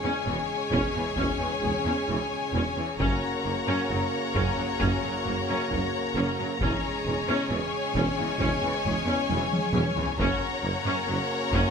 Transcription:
0.00 0.11 E2 medium
0.00 2.82 C#3 medium
0.00 2.82 G#3 medium
0.00 2.96 C#4 medium
0.00 3.00 G#4 medium
0.00 3.01 G#4 medium
0.00 2.96 C#5 soft
0.00 2.96 C#5 medium
0.00 2.96 G#5 medium
0.00 3.00 G#5 medium
0.04 0.25 C#4 medium
0.26 0.34 E1 soft
0.26 0.36 E1 soft
0.26 0.35 E2 soft
0.26 0.34 E3 soft
0.71 0.81 E1 medium
0.71 0.80 E1 medium
0.71 0.79 E2 medium
0.71 0.93 C#4 medium
0.71 taiko medium
0.95 1.03 E2 soft
0.95 1.04 E3 soft
1.17 1.25 E1 medium
1.17 1.26 E1 medium
1.17 1.25 E2 medium
1.17 1.39 C#4 medium
1.17 taiko medium
1.39 1.47 E2 soft
1.39 1.49 E3 soft
1.61 1.70 E1 medium
1.61 1.71 E1 soft
1.61 1.69 E2 soft
1.61 1.72 G#3 soft
1.61 taiko low soft
1.84 1.92 E2 medium
1.84 2.08 C#4 soft
2.07 2.17 E1 medium
2.07 2.16 E1 soft
2.07 2.15 E2 soft
2.07 2.17 E3 medium
2.07 taiko low medium
2.52 2.61 E1 medium
2.52 2.63 E1 medium
2.52 2.60 E2 medium
2.52 2.76 C#4 medium
2.76 2.84 E2 soft
2.76 2.86 E3 soft
2.98 3.08 F#1 medium
2.98 3.07 F#1 medium
2.98 3.07 F#2 medium
2.98 6.56 C#3 medium
2.98 6.56 A#3 medium
2.98 6.56 C#4 medium
2.98 3.20 C#4 medium
2.98 6.44 C#4 medium
2.98 6.44 F#4 medium
2.98 6.60 A#4 medium
2.98 6.56 C#5 medium
2.98 6.57 C#5 soft
2.98 6.60 F#5 medium
2.98 7.47 A#5 medium
2.98 taiko medium
3.44 3.53 F#1 soft
3.44 3.52 F#2 soft
3.44 3.53 A#3 soft
3.67 3.75 F#2 medium
3.67 3.88 C#4 medium
3.89 3.98 F#1 soft
3.89 3.99 F#2 soft
3.89 3.98 F#3 soft
4.34 4.44 F#1 medium
4.34 4.43 F#1 medium
4.34 4.44 F#2 medium
4.34 4.56 C#4 medium
4.34 taiko medium
4.58 4.66 F#2 soft
4.58 4.66 F#3 soft
4.80 4.89 F#1 medium
4.80 4.88 F#1 medium
4.80 4.89 F#2 medium
4.80 5.01 C#4 medium
4.80 taiko medium
5.04 5.12 F#2 soft
5.04 5.12 F#3 soft
5.24 5.34 F#1 soft
5.24 5.34 F#1 medium
5.24 5.35 F#2 soft
5.24 5.34 A#3 medium
5.24 taiko low soft
5.49 5.58 F#2 medium
5.49 5.70 C#4 medium
5.70 5.79 F#1 medium
5.70 5.79 F#1 soft
5.70 5.81 F#2 soft
5.70 5.79 F#3 medium
5.70 taiko low medium
6.15 6.23 F#1 medium
6.15 6.24 F#1 medium
6.15 6.25 F#2 medium
6.15 6.37 C#4 medium
6.38 6.48 F#2 soft
6.38 6.46 F#3 soft
6.60 6.69 E1 medium
6.60 6.68 E1 medium
6.60 6.71 E2 medium
6.60 10.03 C#3 medium
6.60 10.03 G#3 medium
6.60 10.15 C#4 medium
6.60 6.82 C#4 medium
6.60 10.19 G#4 medium
6.60 10.15 G#4 medium
6.60 10.15 C#5 medium
6.60 10.16 C#5 medium
6.60 10.19 G#5 medium
6.60 taiko medium
7.05 7.14 E1 soft
7.05 7.13 E1 soft
7.05 7.15 E2 soft
7.05 7.14 G#3 soft
7.28 7.37 E2 medium
7.28 7.49 C#4 medium
7.49 7.59 E1 medium
7.49 7.58 E1 soft
7.49 7.59 E2 medium
7.49 7.58 E3 soft
7.49 10.19 G#5 medium
7.94 8.02 E1 medium
7.94 8.04 E1 medium
7.94 8.05 E2 medium
7.94 8.16 C#4 medium
7.94 taiko medium
8.18 8.27 E2 soft
8.18 8.26 E3 soft
8.39 8.47 E1 medium
8.39 8.49 E1 medium
8.39 8.49 E2 medium
8.39 8.61 C#4 medium
8.39 taiko medium
8.63 8.71 E2 soft
8.63 8.71 E3 medium
8.85 8.94 E1 medium
8.85 8.93 E1 medium
8.85 8.94 E2 medium
8.85 8.94 G#3 soft
8.85 taiko low medium
9.07 9.15 E2 medium
9.07 9.28 C#4 medium
9.29 9.37 E1 medium
9.29 9.38 E1 medium
9.29 9.37 E2 soft
9.29 9.40 E3 medium
9.29 taiko high medium
9.53 taiko high medium
9.73 9.81 E1 medium
9.73 9.83 E1 medium
9.73 9.82 E2 medium
9.73 9.96 C#4 medium
9.73 taiko high medium
9.97 10.05 E2 medium
9.97 10.05 E3 medium
9.97 taiko low medium
10.17 10.26 F#1 medium
10.17 10.27 F#1 medium
10.17 10.26 F#2 medium
10.17 11.70 C#3 medium
10.17 11.70 A#3 medium
10.17 11.70 C#4 medium
10.17 10.41 C#4 medium
10.17 11.70 F#4 medium
10.17 11.70 A#4 medium
10.17 11.70 C#5 medium
10.17 11.70 F#5 medium
10.17 11.70 A#5 medium
10.17 taiko medium
10.63 10.71 F#1 soft
10.63 10.72 F#1 medium
10.63 10.71 F#2 soft
10.63 10.73 A#3 soft
10.85 10.93 F#2 medium
10.85 11.07 C#4 medium
11.08 11.17 F#1 medium
11.08 11.16 F#1 soft
11.08 11.16 F#2 medium
11.08 11.16 F#3 soft
11.53 11.61 F#1 medium
11.53 11.63 F#1 medium
11.53 11.61 F#2 medium
11.53 11.70 C#4 medium
11.53 taiko medium

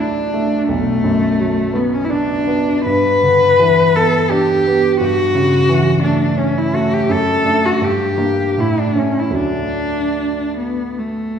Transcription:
0.00 0.65 D2 soft
0.00 0.71 A2 soft
0.00 0.71 F#3 soft
0.00 0.20 A3 soft
0.00 0.55 D4 soft
0.00 0.68 D4 medium
0.34 0.69 A3 soft
0.69 2.82 B1 soft
0.69 1.77 A3 medium
1.04 1.60 F#2 soft
1.40 1.95 F#3 soft
1.73 2.31 B3 soft
1.73 1.95 B3 medium
1.94 2.06 C#4 medium
2.05 2.11 E4 soft
2.10 2.71 D4 medium
2.10 2.85 D4 medium
2.47 2.86 B3 soft
2.85 4.96 G2 soft
2.85 3.98 B4 medium
3.23 3.81 D3 soft
3.59 4.16 E3 soft
3.96 4.52 B3 soft
3.96 4.31 A4 medium
4.30 4.87 D4 medium
4.30 5.00 G4 medium
4.67 5.01 B3 soft
5.01 7.05 G2 soft
5.01 6.01 F#4 medium
5.35 5.89 C#3 soft
5.69 6.23 E3 soft
6.03 6.58 A3 soft
6.03 6.40 D4 medium
6.37 6.94 C#4 soft
6.37 6.60 C#4 medium
6.58 6.77 E4 medium
6.74 7.09 A3 soft
6.74 6.96 F#4 medium
6.94 7.13 G4 medium
7.09 7.79 F#2 soft
7.09 7.67 A4 medium
7.45 7.78 A3 soft
7.45 7.78 D4 soft
7.66 7.86 F#4 medium
7.81 8.54 G2 soft
7.81 8.62 G4 medium
8.18 8.52 A#3 soft
8.18 8.52 D4 soft
8.58 9.33 A2 soft
8.58 8.81 E4 medium
8.80 9.00 D4 medium
8.95 9.31 A3 soft
8.95 9.31 C#4 soft
8.95 9.21 C#4 medium
9.19 9.37 E4 medium
9.30 11.39 D2 soft
9.30 11.39 F#3 soft
9.30 11.39 A3 soft
9.34 11.39 D4 soft
9.34 10.57 D4 medium
10.58 11.00 B3 medium
10.98 11.39 A3 medium

